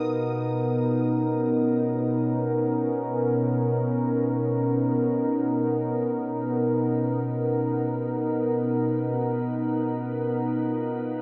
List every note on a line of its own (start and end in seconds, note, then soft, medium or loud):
0.00 8.89 B2 medium
0.00 11.22 B3 medium
0.00 11.22 D#4 medium
0.00 2.32 F4 medium
0.00 11.22 A#4 medium
0.91 10.67 C#4 medium
8.90 11.22 B2 medium
10.52 11.22 F4 medium